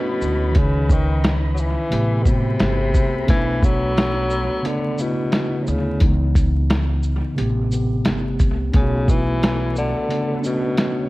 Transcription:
Already playing: B2 A3 C#4 D4 E4 A4 B4 C#5 B5
0.21 D2, shaker
0.52 D#3 C#4 D#4 B4 D#5, closed hi-hat
0.56 C#2 C#3 D#4, kick
0.89 D#3, kick, shaker
1.24 snare, closed hi-hat
1.54 F#3, shaker
1.60 E3
1.89 A1 C3 A3 B3 G4 A4 B4 G5 B5, closed hi-hat
2.23 B2 C3 A3 B3, kick, shaker
2.27 C3 F#4
2.34 G4
2.59 G1, snare, closed hi-hat
2.94 C2, kick, shaker
3.26 B1 E3 A3 B3 C#4 B4 C#5, kick, closed hi-hat
3.36 D4
3.63 F#3, kick, shaker
3.97 snare, closed hi-hat
4.30 shaker
4.62 C#3 A3 B3 D4, closed hi-hat
4.66 D3
4.98 B2 C#3 A3 B3 E4, shaker
5.32 snare, closed hi-hat
5.63 C3, shaker
5.68 D2 C#3
5.99 C#2 C#3 E3 B3 D#4, kick, closed hi-hat
6.35 kick, closed hi-hat, shaker
6.70 snare, closed hi-hat
7.03 shaker
7.35 A1 C3 A3 B3 G4, closed hi-hat
7.71 C3 A3 B3 G4, shaker
8.05 G1, snare, closed hi-hat
8.40 C2, kick, closed hi-hat, shaker
8.72 B1 C#3 A3 B3 C#4 A4 B4 C#5, kick, closed hi-hat
8.82 F#4
9.08 E3, kick, shaker
9.43 snare, closed hi-hat
9.76 D3, shaker
10.08 C#3 A3 B3 D4, closed hi-hat
10.40 A3 B3 C#4, shaker
10.46 B2
10.50 D4
10.77 snare, closed hi-hat

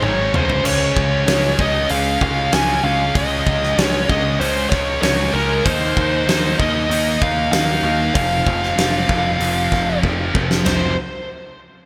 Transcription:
0.02 G#1 G#2 D#3 G#3 C#5, high tom
0.33 C#2 C#3 G#3 C#4 C5, mid tom
0.49 floor tom
0.65 C#2 C#3 G#3 C#4 C#5, crash
0.97 C#2, kick
1.26 C#2 C#3 G#3 C#4, snare, open hi-hat
1.58 C#2 C#3 G#3 C#4 D#5, kick
1.89 C#2 C#3 G#3 C#4 F5, open hi-hat
2.21 C#2 F5, kick
2.52 C#2 C#3 G#3 C#4 G#5, snare, open hi-hat
2.84 C#2 C#3 G#3 C#4 F5
3.14 C#2 C#3 G#3 C#4 D#5, kick, open hi-hat
3.46 C#2, kick
3.63 snare
3.78 C#2 C#3 G#3 C#4, snare, open hi-hat
3.84 C#5
4.08 C#2 C#3 G#3 C#4 D#5, kick
4.40 C#2 C#3 G#3 C#4 C5, open hi-hat
4.70 C#2 C#5, kick, snare
5.02 C#2 C#3 G#3 C#4 C#5, snare, open hi-hat
5.33 C#2 C#3 G#3 C#4 A#4
5.64 D#2 D#3 A#3 D#4 C5, kick, open hi-hat
5.97 D#2, kick
6.27 D#2 D#3 A#3 D#4, snare, open hi-hat
6.58 D#2 D#3 A#3 D#4 D#5, kick
6.89 D#2 D#3 A#3 D#4, open hi-hat
7.22 D#2 F5, kick
7.51 D#2 D#3 A#3 D#4 F5, snare, open hi-hat
7.82 D#2 D#3 A#3 D#4
8.14 F1 F2 C3 F3 F5, kick, open hi-hat
8.47 F1, kick
8.63 snare
8.76 F1 F2 C3 F3, snare, open hi-hat
9.07 F1 F2 C3 F3, kick
9.38 F1 F2 C3 F3, open hi-hat
9.72 F1, kick, snare
10.02 F1 F2 C3 F3, kick
10.33 F1 F2 C3 F3, kick
10.51 snare
10.66 F1 F2 C3 F3 C5, snare, floor tom, ride bell

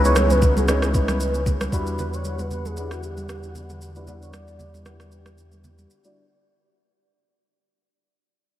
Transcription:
Already playing: C#2 C#3 E3 G#3 B3 C#4 D#4 E4 F#4 B4
0.05 C#5, shaker
0.16 cross-stick, high conga, shaker
0.30 B4, high conga, shaker
0.42 kick, low conga, shaker
0.57 G#4, high conga, shaker
0.68 G#3 C#4 D#4 E4 C#5, cross-stick, high conga, shaker
0.82 G#4, cross-stick, shaker
0.94 B4, kick, shaker
1.08 cross-stick, high conga, shaker
1.20 shaker
1.34 shaker
1.46 kick, low conga, shaker
1.61 cross-stick, high conga, shaker
1.72 E2 D3 G3 D4 E4 F#4 B4 F#5, kick, shaker
1.87 shaker
1.99 B4, low conga, shaker
2.13 C#5, shaker
2.24 high conga, shaker
2.39 B4, high conga, shaker
2.50 low conga, shaker
2.65 G#4, high conga, shaker
2.77 G3 D4 E4 B4 F#5, high conga, shaker
2.91 F#4, cross-stick, shaker
3.03 G4, shaker
3.17 high conga, shaker
3.29 cross-stick, shaker
3.43 shaker
3.55 low conga, shaker
3.70 high conga, shaker
3.82 shaker
3.95 G3 D4 E4 F#4 B4, shaker
4.07 G3 D4 E4 F#4 B4 D5, low conga, shaker
4.22 C#5, shaker
4.33 D5, cross-stick, high conga, shaker
4.48 high conga, shaker
4.59 low conga, shaker
4.74 high conga, shaker
4.86 G3 D4 E4 G4 B4 F#5, cross-stick, high conga, shaker
5.00 cross-stick, shaker
5.12 shaker
5.26 cross-stick, high conga, shaker
5.38 shaker
5.52 high conga, shaker
5.64 low conga, shaker
5.78 high conga, shaker
5.90 shaker
6.04 G3 D4 E4 F#4 D5, shaker

